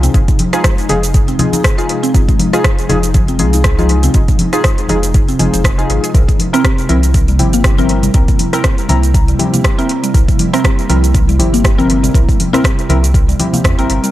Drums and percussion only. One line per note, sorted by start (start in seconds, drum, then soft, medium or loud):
0.03 closed hi-hat soft
0.03 low conga loud
0.03 shaker medium
0.14 kick loud
0.14 closed hi-hat medium
0.14 muted conga medium
0.14 shaker medium
0.28 kick medium
0.28 closed hi-hat soft
0.28 shaker soft
0.39 open hi-hat medium
0.39 high conga loud
0.53 cross-stick medium
0.53 closed hi-hat soft
0.53 muted conga soft
0.53 shaker medium
0.64 kick loud
0.64 cross-stick loud
0.64 closed hi-hat medium
0.64 shaker medium
0.78 closed hi-hat soft
0.78 shaker soft
0.89 open hi-hat medium
0.89 muted conga medium
0.89 high conga loud
0.89 low conga loud
1.03 closed hi-hat soft
1.03 shaker medium
1.14 kick loud
1.14 closed hi-hat medium
1.14 shaker medium
1.28 closed hi-hat soft
1.28 muted conga soft
1.28 shaker soft
1.39 open hi-hat medium
1.39 high conga loud
1.39 low conga loud
1.53 closed hi-hat soft
1.53 high conga medium
1.53 low conga loud
1.53 shaker medium
1.63 kick loud
1.63 cross-stick loud
1.63 closed hi-hat medium
1.63 muted conga medium
1.63 shaker medium
1.79 closed hi-hat soft
1.79 shaker soft
1.89 open hi-hat medium
2.04 closed hi-hat soft
2.04 shaker medium
2.14 kick loud
2.14 closed hi-hat medium
2.14 muted conga medium
2.14 shaker medium
2.29 kick medium
2.29 closed hi-hat soft
2.29 shaker soft
2.39 open hi-hat medium
2.39 high conga loud
2.53 cross-stick medium
2.53 closed hi-hat soft
2.53 muted conga soft
2.53 shaker medium
2.64 kick loud
2.64 cross-stick loud
2.64 closed hi-hat medium
2.64 shaker medium
2.79 closed hi-hat soft
2.79 shaker soft
2.89 open hi-hat medium
2.89 muted conga soft
2.89 high conga loud
2.89 low conga loud
3.03 closed hi-hat soft
3.03 shaker medium
3.14 kick loud
3.14 closed hi-hat medium
3.14 high conga loud
3.14 shaker medium
3.28 closed hi-hat soft
3.28 muted conga soft
3.28 shaker soft
3.39 open hi-hat medium
3.39 high conga loud
3.39 low conga loud
3.53 closed hi-hat soft
3.53 shaker medium
3.64 kick loud
3.64 cross-stick loud
3.64 closed hi-hat medium
3.64 muted conga soft
3.64 shaker medium
3.79 high conga loud
3.79 shaker soft
3.89 open hi-hat medium
4.03 closed hi-hat soft
4.03 low conga medium
4.03 shaker medium
4.14 kick loud
4.14 closed hi-hat medium
4.14 shaker medium
4.28 kick medium
4.28 closed hi-hat soft
4.28 shaker soft
4.39 open hi-hat medium
4.39 high conga loud
4.53 cross-stick medium
4.53 closed hi-hat soft
4.53 shaker medium
4.64 kick loud
4.64 cross-stick loud
4.64 closed hi-hat medium
4.64 shaker medium
4.78 closed hi-hat soft
4.78 shaker soft
4.88 open hi-hat medium
4.88 muted conga soft
4.88 high conga loud
4.88 low conga loud
5.03 closed hi-hat soft
5.03 shaker medium
5.14 kick loud
5.14 closed hi-hat medium
5.14 shaker medium
5.28 closed hi-hat soft
5.28 muted conga soft
5.28 shaker soft
5.39 open hi-hat medium
5.39 high conga loud
5.39 low conga medium
5.53 closed hi-hat soft
5.53 high conga medium
5.53 low conga loud
5.53 shaker medium
5.64 kick loud
5.64 cross-stick loud
5.64 closed hi-hat medium
5.64 shaker medium
5.79 closed hi-hat soft
5.79 shaker soft
5.90 open hi-hat medium
6.04 closed hi-hat soft
6.04 shaker medium
6.14 kick loud
6.14 closed hi-hat medium
6.14 muted conga soft
6.14 shaker medium
6.29 kick medium
6.29 closed hi-hat soft
6.29 shaker soft
6.39 open hi-hat medium
6.39 high conga medium
6.53 cross-stick medium
6.53 closed hi-hat soft
6.53 muted conga soft
6.53 shaker medium
6.64 kick loud
6.64 cross-stick loud
6.64 closed hi-hat medium
6.64 shaker medium
6.78 closed hi-hat soft
6.78 shaker soft
6.89 open hi-hat medium
6.89 muted conga soft
6.89 high conga medium
6.89 low conga loud
7.03 closed hi-hat soft
7.03 shaker medium
7.14 kick loud
7.14 closed hi-hat medium
7.14 high conga medium
7.14 shaker medium
7.28 closed hi-hat soft
7.28 muted conga soft
7.28 shaker soft
7.39 open hi-hat medium
7.39 high conga medium
7.39 low conga medium
7.53 closed hi-hat soft
7.53 shaker medium
7.64 kick loud
7.64 cross-stick loud
7.64 closed hi-hat medium
7.64 muted conga medium
7.64 shaker medium
7.78 high conga loud
7.78 shaker soft
7.89 open hi-hat medium
8.03 closed hi-hat soft
8.03 low conga medium
8.03 shaker medium
8.14 kick loud
8.14 closed hi-hat medium
8.14 muted conga medium
8.14 shaker medium
8.28 kick medium
8.28 closed hi-hat soft
8.28 shaker soft
8.39 open hi-hat medium
8.39 high conga medium
8.53 cross-stick medium
8.53 closed hi-hat soft
8.53 muted conga soft
8.53 shaker medium
8.64 kick loud
8.64 cross-stick loud
8.64 closed hi-hat medium
8.64 shaker medium
8.78 closed hi-hat soft
8.78 shaker soft
8.89 open hi-hat medium
8.89 muted conga medium
8.89 high conga medium
8.89 low conga loud
9.03 closed hi-hat soft
9.03 shaker medium
9.14 kick loud
9.14 closed hi-hat medium
9.14 shaker medium
9.28 closed hi-hat soft
9.28 muted conga soft
9.28 shaker soft
9.39 open hi-hat medium
9.39 high conga loud
9.39 low conga medium
9.53 closed hi-hat soft
9.53 high conga medium
9.53 low conga loud
9.53 shaker medium
9.64 kick loud
9.64 cross-stick loud
9.64 closed hi-hat medium
9.64 muted conga medium
9.64 shaker medium
9.79 closed hi-hat soft
9.79 shaker soft
9.89 open hi-hat medium
10.04 closed hi-hat soft
10.04 shaker medium
10.14 kick loud
10.14 closed hi-hat medium
10.14 muted conga medium
10.14 shaker medium
10.28 kick medium
10.28 closed hi-hat soft
10.28 shaker soft
10.39 open hi-hat medium
10.39 high conga loud
10.53 cross-stick medium
10.53 closed hi-hat soft
10.53 muted conga soft
10.53 shaker medium
10.64 kick loud
10.64 cross-stick loud
10.64 closed hi-hat medium
10.64 shaker medium
10.79 closed hi-hat soft
10.79 shaker soft
10.89 open hi-hat medium
10.89 muted conga medium
10.89 high conga medium
10.89 low conga medium
11.04 closed hi-hat soft
11.04 shaker medium
11.14 kick loud
11.14 closed hi-hat medium
11.14 high conga medium
11.14 shaker medium
11.29 closed hi-hat soft
11.29 muted conga soft
11.29 shaker soft
11.40 open hi-hat loud
11.40 high conga loud
11.40 low conga loud
11.54 closed hi-hat soft
11.54 shaker medium
11.64 kick loud
11.64 cross-stick loud
11.64 closed hi-hat medium
11.64 muted conga medium
11.64 shaker medium
11.78 high conga loud
11.78 shaker soft
11.90 open hi-hat medium
12.04 closed hi-hat soft
12.04 low conga medium
12.04 shaker medium
12.14 kick loud
12.14 closed hi-hat medium
12.14 muted conga medium
12.14 shaker medium
12.29 kick medium
12.29 closed hi-hat soft
12.29 shaker soft
12.40 open hi-hat medium
12.40 high conga medium
12.53 cross-stick medium
12.53 closed hi-hat soft
12.53 muted conga soft
12.53 low conga medium
12.53 shaker medium
12.64 kick loud
12.64 cross-stick loud
12.64 closed hi-hat medium
12.64 shaker medium
12.79 closed hi-hat soft
12.79 shaker soft
12.89 open hi-hat medium
12.89 muted conga medium
12.89 high conga medium
12.89 low conga loud
13.04 closed hi-hat soft
13.04 shaker medium
13.14 kick loud
13.14 closed hi-hat medium
13.14 shaker medium
13.29 closed hi-hat soft
13.29 muted conga soft
13.29 shaker soft
13.39 open hi-hat loud
13.39 high conga loud
13.39 low conga medium
13.53 closed hi-hat soft
13.53 high conga medium
13.53 low conga loud
13.53 shaker medium
13.64 kick loud
13.64 cross-stick loud
13.64 closed hi-hat medium
13.64 shaker medium
13.79 closed hi-hat soft
13.79 shaker soft
13.90 open hi-hat medium
14.04 closed hi-hat soft
14.04 shaker medium